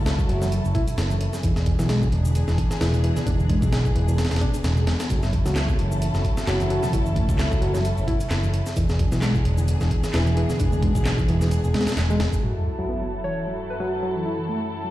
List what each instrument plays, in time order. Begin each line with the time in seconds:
Already playing: picked electric bass C#2, string section F#3 C#4 E4 A4
0.06 snare, closed hi-hat, shaker
0.19 reed electric piano F#3, kick, shaker
0.29 picked electric bass F#1, reed electric piano F#3, closed hi-hat
0.42 reed electric piano F#3, snare, high conga, shaker
0.52 closed hi-hat, shaker
0.64 picked electric bass F#1, shaker
0.75 reed electric piano E4, kick, closed hi-hat, low conga
0.87 muted picked electric bass stroke, closed hi-hat, shaker
0.98 picked electric bass F#1, snare, closed hi-hat, shaker
1.10 high conga, shaker
1.21 closed hi-hat
1.33 snare, shaker
1.43 picked electric bass E1, string section E3 B3 D4 G#4, reed electric piano E3, kick, closed hi-hat, shaker
1.56 snare, shaker
1.66 kick, closed hi-hat, high conga
1.79 picked electric bass B1, reed electric piano E3, snare, shaker
1.89 reed electric piano G#3, snare, closed hi-hat, shaker
2.02 reed electric piano E3, kick, shaker
2.12 picked electric bass E1, closed hi-hat
2.25 reed electric piano D3, high conga, shaker
2.35 closed hi-hat, shaker
2.48 picked electric bass E1, reed electric piano E3, snare, shaker
2.58 kick, closed hi-hat
2.71 muted picked electric bass stroke, snare, shaker
2.81 picked electric bass E1, reed electric piano E3, snare, open hi-hat, shaker
2.93 closed hi-hat, high conga, shaker
3.04 reed electric piano E3, closed hi-hat
3.16 reed electric piano D3, snare, low conga, shaker
3.26 picked electric bass E1, reed electric piano D4, kick, closed hi-hat, shaker
3.39 reed electric piano D3, shaker
3.49 reed electric piano G#3, kick, closed hi-hat, high conga
3.62 picked electric bass B1, kick, shaker
3.72 snare, closed hi-hat, shaker
3.85 reed electric piano E3, kick, shaker
3.95 picked electric bass E1, reed electric piano E3, closed hi-hat
4.08 reed electric piano E3, high conga, shaker
4.18 snare, closed hi-hat, shaker
4.25 snare, closed hi-hat
4.31 picked electric bass E1, snare, closed hi-hat, shaker
4.36 snare, closed hi-hat
4.41 reed electric piano D4, kick, closed hi-hat, low conga
4.54 muted picked electric bass stroke, closed hi-hat, shaker
4.64 picked electric bass E1, snare, closed hi-hat, shaker
4.76 high conga, shaker
4.87 snare, closed hi-hat, low conga
5.00 snare, closed hi-hat, shaker
5.10 picked electric bass F#1, string section F#3 C#4 E4 A4, reed electric piano F#3, kick, closed hi-hat, shaker
5.23 snare, shaker
5.33 kick, closed hi-hat, high conga
5.45 picked electric bass C#2, reed electric piano F#3, snare, shaker
5.56 reed electric piano B3, snare, clap, closed hi-hat, shaker
5.69 reed electric piano F#3, kick, shaker
5.78 picked electric bass F#1, closed hi-hat
5.92 reed electric piano E3, high conga, shaker
6.02 closed hi-hat, shaker
6.14 picked electric bass F#1, reed electric piano F#3, snare, shaker
6.25 kick, closed hi-hat
6.37 muted picked electric bass stroke, snare, shaker
6.47 picked electric bass F#1, reed electric piano F#3, snare, clap, open hi-hat, shaker
6.60 closed hi-hat, high conga, shaker
6.70 reed electric piano F#3, closed hi-hat
6.83 reed electric piano E3, snare, low conga, shaker
6.93 picked electric bass F#1, reed electric piano E4, kick, closed hi-hat, shaker
7.06 reed electric piano E3, shaker
7.16 reed electric piano A3, kick, closed hi-hat, high conga
7.29 picked electric bass C#2, kick, shaker
7.39 snare, clap, closed hi-hat, shaker
7.51 reed electric piano F#3, kick, shaker
7.62 picked electric bass F#1, reed electric piano F#3, closed hi-hat
7.74 reed electric piano F#3, snare, high conga, shaker
7.85 closed hi-hat, shaker
7.98 picked electric bass F#1, shaker
8.07 reed electric piano E4, kick, closed hi-hat, low conga
8.20 muted picked electric bass stroke, closed hi-hat, shaker
8.30 picked electric bass F#1, snare, clap, closed hi-hat, shaker
8.43 high conga, shaker
8.54 closed hi-hat
8.66 snare, shaker
8.76 picked electric bass E1, string section E3 B3 D4 G#4, reed electric piano E3, kick, closed hi-hat, shaker
8.89 snare, shaker
8.99 kick, closed hi-hat, high conga
9.12 picked electric bass B1, reed electric piano E3, snare, shaker
9.22 reed electric piano G#3, snare, clap, closed hi-hat, shaker
9.35 reed electric piano E3, kick, shaker
9.45 picked electric bass E1, closed hi-hat
9.58 reed electric piano D3, high conga, shaker
9.68 closed hi-hat, shaker
9.81 picked electric bass E1, reed electric piano E3, snare, shaker
9.91 kick, closed hi-hat
10.04 muted picked electric bass stroke, snare, shaker
10.14 picked electric bass E1, reed electric piano E3, snare, clap, open hi-hat, shaker
10.27 closed hi-hat, high conga, shaker
10.37 reed electric piano E3, closed hi-hat
10.49 reed electric piano D3, snare, low conga, shaker
10.60 picked electric bass E1, reed electric piano D4, kick, closed hi-hat, shaker
10.72 reed electric piano D3, low conga, shaker
10.83 reed electric piano G#3, kick, closed hi-hat, high conga
10.95 picked electric bass B1, kick, shaker
11.05 snare, clap, closed hi-hat, shaker
11.18 reed electric piano E3, kick, shaker
11.28 picked electric bass E1, reed electric piano E3, closed hi-hat
11.41 reed electric piano E3, snare, high conga, shaker
11.51 closed hi-hat, shaker
11.64 picked electric bass E1, shaker
11.74 reed electric piano G#3, snare, closed hi-hat, low conga
11.81 snare, closed hi-hat
11.87 muted picked electric bass stroke, snare, closed hi-hat, shaker
11.92 snare, closed hi-hat
11.97 picked electric bass E1, snare, clap, closed hi-hat, shaker
12.10 reed electric piano G#3, high conga, shaker
12.20 snare, closed hi-hat, low conga
12.33 kick, shaker
12.43 string section F#2 F#3 E4 A4, reed electric piano F#3, sub drop
12.79 reed electric piano F#3
12.89 reed electric piano B3
13.01 reed electric piano F#3
13.24 reed electric piano E3, soft synth lead C#5
13.47 reed electric piano F#3
13.70 soft synth lead B4
13.80 reed electric piano F#3, soft synth lead B4
14.03 reed electric piano F#3
14.16 reed electric piano E3
14.26 reed electric piano E4
14.39 reed electric piano E3
14.49 reed electric piano A3
14.84 reed electric piano F#3